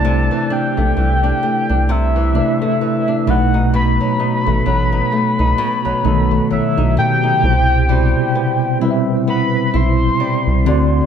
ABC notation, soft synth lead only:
X:1
M:4/4
L:1/8
Q:"Swing 16ths" 1/4=65
K:Clyd
V:1 name="Soft synth lead"
a g3 e3 f | b6 e g- | g3 z b c'3 |]